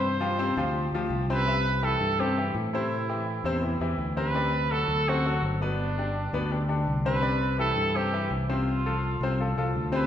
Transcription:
<<
  \new Staff \with { instrumentName = "Trumpet" } { \time 4/4 \key c \major \tempo 4 = 166 c''2. r8 b'8~ | b'4 a'4 g'4 r8 e'8~ | e'2~ e'8 r4 b'8~ | b'4 a'4 fis'4 r8 d'8~ |
d'2~ d'8 r4 b'8~ | b'4 a'4 g'4 r8 f'8~ | f'2~ f'8 r4 b'8 | }
  \new Staff \with { instrumentName = "Grand piano" } { \time 4/4 \key c \major <c c' c''>8 <f f' g'>8 <c c' c''>8 <f f' g'>4 <f f' g'>4 <c c' c''>8 | <c c' e''>4 <e e' g'>4 <c c' c''>8 <e e' g'>4 <c c' c''>8~ | <c c' c''>8 <e e' g'>4 <c c' c''>8 <e e' g'>8 <e e' g'>4 <c c' c''>8 | <c c' d''>4 <fis fis' a'>4 <c c' c''>8 <fis fis' a'>4 <b, b b'>8~ |
<b, b b'>8 <d d' g'>4 <b, b b'>8 <d d' g'>8 <d d' g'>4 <c c' c''>8 | <c c' d''>4 <e e' g'>4 <c c' c''>8 <e e' g'>4 <c c' c''>8~ | <c c' c''>8 <f f' a'>4 <c c' c''>8 <f f' a'>8 <f f' a'>4 <c c' c''>8 | }
  \new Staff \with { instrumentName = "Fingered electric bass" } { \clef bass \time 4/4 \key c \major g,4. d,4 d,8 c,4~ | c,4. g,4. a,4~ | a,4. e,4 e,8 d,4~ | d,4. d,4. g,,4~ |
g,,4. d,4. c,4~ | c,4. g,4. c,4~ | c,4. c,4 c,8 d,4 | }
>>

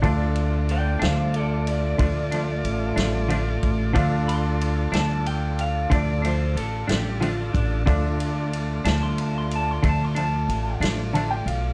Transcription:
<<
  \new Staff \with { instrumentName = "Clean electric guitar" } { \time 12/8 \key d \minor \tempo 4. = 61 d''8 r8 <d'' g''>8 <c'' f''>8 <a' d''>8 d''2 r4. | r8 c'''4 a''8 g''8 f''8 d''8 c''8 a'8 g'8 f'8 d'8 | d'4 r8 a''16 c'''16 a''16 c'''16 a''16 c'''16 a''16 c'''16 a''4 r4. | }
  \new Staff \with { instrumentName = "Upright piano" } { \time 12/8 \key d \minor << { r1. | r1. | r1 r4 a''16 g''16 f''8 | } \\ { <d' f' a' d''>1. | <d' f' a' f''>1. | <d' f' a' d''>1. | } >> }
  \new Staff \with { instrumentName = "Tonewheel organ" } { \time 12/8 \key d \minor <a f' d''>1. | <f' a' d''>1. | <a f' d''>1. | }
  \new Staff \with { instrumentName = "Clean electric guitar" } { \time 12/8 \key d \minor <d f a d'>8 r4 <f a d'>8 r4 <d f a d'>8 <f a d'>8 r8 <f a d'>8 <d f a d'>8 r8 | <d f a d'>8 r4 <f a d'>8 r4 <d f a d'>8 <f a d'>8 r8 <f a d'>8 <d f a d'>8 r8 | <d f a d'>8 r4 <f a d'>8 r4 <d f a d'>8 <f a d'>8 r8 <f a d'>8 <d f a d'>8 r8 | }
  \new Staff \with { instrumentName = "Upright bass" } { \clef bass \time 12/8 \key d \minor d,4. d,4. d,4 a,,8 a,,4 a,,8 | d,4. d,4. d,4 a,,8 a,,4 a,,8 | d,4. d,4. d,4 a,,8 a,,4 b,,8 | }
  \new DrumStaff \with { instrumentName = "Drums" } \drummode { \time 12/8 <bd cymr>8 cymr8 cymr8 <cymr sn>8 cymr8 cymr8 <bd cymr>8 cymr8 cymr8 <cymr sn>8 cymr8 <bd cymr>8 | <bd cymr>8 cymr8 cymr8 <cymr sn>8 cymr8 cymr8 <bd cymr>8 cymr8 cymr8 <cymr sn>8 cymr8 <bd cymr>8 | <bd cymr>8 cymr8 cymr8 <cymr sn>8 cymr8 cymr8 <bd cymr>8 cymr8 cymr8 <cymr sn>8 cymr8 cymr8 | }
>>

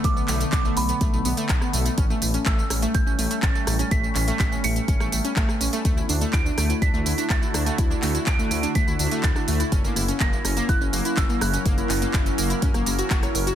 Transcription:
<<
  \new Staff \with { instrumentName = "Synth bell" } { \time 4/4 \key d \major \tempo 4 = 124 d'''4 d'''8 b''2 r8 | r4 e'''4 g'''4 a'''4 | b'''4 b'''8 cis''''2 r8 | r4 d''''4 b'''4 a'''4 |
r4 d''''4 b'''4 a'''4 | r4 ais'''4 fis'''4 e'''8 fis'''8~ | fis'''2. r4 | }
  \new Staff \with { instrumentName = "Ambient pad" } { \time 4/4 \key d \major << { <d b>1 | <g cis'>1~ | <g cis'>1 | <d a fis'>1~ |
<d a fis'>1 | <fis cis' ais'>1~ | <fis cis' ais'>1 | } \\ { a1~ | a1 | b1 | e'1~ |
e'1 | e'1~ | e'1 | } >> }
  \new Staff \with { instrumentName = "Synth pluck" } { \time 4/4 \key d \major a16 b16 a16 a16 b16 a16 a16 b16 a16 a16 b16 a16 r16 b16 a16 a16 | cis'16 a16 a16 cis'16 a16 a16 cis'16 a16 a16 cis'16 a16 a16 cis'16 a16 a16 cis'16 | a16 a16 cis'16 a16 r16 cis'16 a16 a16 cis'16 a16 a16 cis'16 a16 a16 cis'16 a16 | a16 e'16 d'16 a16 e'16 d'16 a16 e'16 d'16 a16 e'16 d'16 a16 e'16 d'16 a16 |
e'16 d'16 a16 e'16 d'16 a16 e'16 d'16 a16 e'16 d'16 a16 e'16 d'16 a16 e'16 | cis'16 ais16 e'16 cis'16 ais16 e'16 cis'16 ais16 e'16 cis'16 ais16 e'16 cis'16 ais16 e'16 cis'16 | ais16 e'16 cis'16 ais16 e'16 cis'16 ais16 e'16 cis'16 ais16 ais16 fis'16 fis'16 cis''16 ais'16 fis'16 | }
  \new Staff \with { instrumentName = "Detuned saw bass" } { \clef bass \time 4/4 \key d \major b,,16 r16 b,,16 r16 b,,16 r16 b,,16 r16 b,,16 b,,16 b,,16 r16 b,,16 r16 b,,16 r16 | a,,16 r16 a,,16 r16 a,,16 r16 a,,16 r16 a,,16 a,,16 a,,16 r16 a,,16 r16 a,,16 r16 | a,,16 r16 a,,16 r16 a,,16 r16 a,,16 r16 a,,16 a,,16 a,,16 r16 a,,16 r16 a,,16 r16 | d,16 r16 d,16 r16 d,16 r16 d,16 r16 d,16 d,16 d,16 r16 d,16 r16 d,16 r16 |
d,16 r16 d,16 r16 d,16 r16 d,16 r16 d,16 d,16 d,16 r16 d,16 r16 d,16 r16 | fis,,16 r16 fis,,16 r16 fis,,16 r16 fis,,16 r16 fis,,16 fis,,16 fis,,16 r16 fis,,16 r16 fis,,16 r16 | fis,,16 r16 fis,,16 r16 fis,,16 r16 fis,,16 r16 fis,16 fis,,16 fis,,16 r16 fis,,16 r16 fis,,16 r16 | }
  \new DrumStaff \with { instrumentName = "Drums" } \drummode { \time 4/4 <hh bd tamb>16 tamb16 <hc hho tamb>16 <hh tamb>16 <hc hh bd tamb>16 tamb16 <hho tamb>16 <hh tamb>16 <hh bd tamb>16 tamb16 <hho tamb>16 <hh tamb>16 <hc hh bd tamb>16 <ss tamb>16 <hho tamb>16 <hh tamb>16 | <hh bd tamb>16 tamb16 <hho tamb>16 <hh tamb>16 <hc hh bd tamb>16 tamb16 <hho ss tamb>16 <hh tamb>16 <hh bd tamb>16 tamb16 <hho tamb>16 <hh tamb>16 <hc hh bd tamb>16 tamb16 <hho ss tamb>16 <hh tamb>16 | <hh bd tamb>16 tamb16 <hc hho tamb>16 <hh tamb>16 <hc hh bd tamb>16 tamb16 <hho tamb>16 <hh tamb>16 <hh bd tamb>16 <ss tamb>16 <hho tamb>16 <hh tamb>16 <hc hh bd tamb>16 <ss tamb>16 <hho tamb>16 <hh tamb>16 | <hh bd tamb>16 tamb16 <hho tamb>16 <hh tamb>16 <hc hh bd tamb>16 tamb16 <hho ss tamb>16 <hh tamb>16 <hh bd tamb>16 tamb16 <hho tamb>16 <hh tamb>16 <hc hh bd tamb>16 tamb16 <hho ss tamb>16 <hh tamb>16 |
<hh bd tamb>16 tamb16 <hc hho tamb>16 <hh tamb>16 <hc hh bd tamb>16 tamb16 <hho tamb>16 <hh tamb>16 <hh bd tamb>16 tamb16 <hho tamb>16 <hh tamb>16 <hc hh bd tamb>16 <ss tamb>16 <hho tamb>16 <hh tamb>16 | <hh bd tamb>16 tamb16 <hho tamb>16 <hh tamb>16 <hc hh bd tamb>16 tamb16 <hho ss tamb>16 <hh tamb>16 <hh bd tamb>16 tamb16 <hho tamb>16 <hh tamb>16 <hc hh bd tamb>16 tamb16 <hho ss tamb>16 <hh tamb>16 | <hh bd tamb>16 <hh tamb>16 <hc hho tamb>16 <hh tamb>16 <hc hh bd tamb>16 <hh tamb>16 <hho tamb>16 <hh tamb>16 <hh bd tamb>16 <hh ss tamb>16 <hho tamb>16 <hh tamb>16 <hc hh bd tamb>16 <hh ss tamb>16 <hho tamb>16 <hh tamb>16 | }
>>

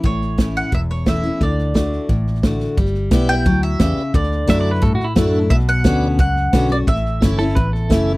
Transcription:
<<
  \new Staff \with { instrumentName = "Mandolin" } { \time 4/4 \key d \major \tempo 4 = 176 cis''4. fis''8 e''8 cis''8 e''4 | d''2.~ d''8 r8 | r4. g''4 e''8 e''4 | d''4 r2. |
e''8 fis''4. fis''4. d''8 | e''2.~ e''8 r8 | }
  \new Staff \with { instrumentName = "Tonewheel organ" } { \time 4/4 \key d \major r1 | r1 | r4 <g' b' d''>8 r4. <g' b' d''>8 r8 | r4 <fis' a' d''>8 r4. <fis' a' e''>8 r8 |
r4 <fis' b' d''>8 r4. <fis' b' d''>8 r8 | r4 <e' a' cis''>8 r4. <e' a' e''>8 r8 | }
  \new Staff \with { instrumentName = "Pedal steel guitar" } { \time 4/4 \key d \major r1 | r1 | r1 | r4 \tuplet 3/2 { e''8 d''8 b'8 a'8 fis'8 e'8 } d'8. r16 |
r1 | r4. a'8 b'8 a'8 r4 | }
  \new Staff \with { instrumentName = "Steel-string acoustic guitar" } { \time 4/4 \key d \major << { r4 <e a cis' e'>4 r4 <e a cis' e'>8 <cis' e'>8 | r4 <d a d' fis'>4 r4 <d a d' fis'>4 | r4 <g b e'>4 r2 | r4 <fis a d' e'>4 r4 <fis a d' e'>4 |
r4 <d b cis' fis'>4 r4 <d b cis' fis'>8 <cis' fis'>8 | r4 <e a cis' e'>8 <cis' e'>8 r4 <e a cis' e'>4 | } \\ { a,2 e,2 | d2 a,2 | g2 fis4 cis4 | d2 a,2 |
b,2 fis,2 | a,2 e,2 | } >> }
  \new Staff \with { instrumentName = "Fingered electric bass" } { \clef bass \time 4/4 \key d \major a,,2 e,,2 | d,2 a,,2 | g,,4 b,,4 d,4 e,8 r8 | d,4 fis,4 g,8 r8 fis,4 |
b,,4 d,4 cis,4 b,,4 | a,,4 g,,4 a,,4 fis,,4 | }
  \new DrumStaff \with { instrumentName = "Drums" } \drummode { \time 4/4 <bd sn>8 sn8 <hhp bd sn>8 sn8 <bd sn>8 sn8 <hhp bd sn>8 sn8 | <bd sn>8 sn8 <hhp bd sn>8 sn8 <bd sn>8 sn16 sn16 <hhp bd sn>8 sn8 | <bd sn>16 sn16 sn8 <hhp bd sn>8 sn16 sn16 <bd sn>8 sn8 <hhp bd sn>8 sn8 | <bd sn>16 sn16 sn8 <hhp bd sn>8 sn16 sn16 <bd sn>8 sn8 <hhp bd sn>8 sn8 |
<bd sn>16 sn16 sn8 <hhp bd sn>8 sn8 <bd sn>8 sn8 <hhp bd sn>8 sn8 | <bd sn>16 sn16 sn8 <hhp bd sn>8 sn16 sn16 <bd sn>8 sn8 <hhp bd sn>8 sn8 | }
>>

